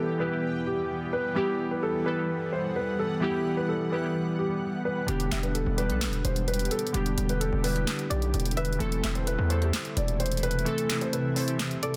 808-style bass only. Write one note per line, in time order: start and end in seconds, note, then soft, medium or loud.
5.08 5.31 E1 loud
5.32 5.65 E1 loud
5.66 5.91 E1 loud
5.90 6.09 B1 loud
6.07 6.24 E1 loud
6.25 6.69 E1 loud
6.94 7.17 E1 loud
7.18 7.51 E1 loud
7.52 7.86 E1 loud
8.11 8.33 B1 loud
8.34 8.78 E1 loud
8.80 9.03 E1 loud
9.04 9.37 E1 loud
9.38 9.72 E2 loud
9.97 10.66 E1 loud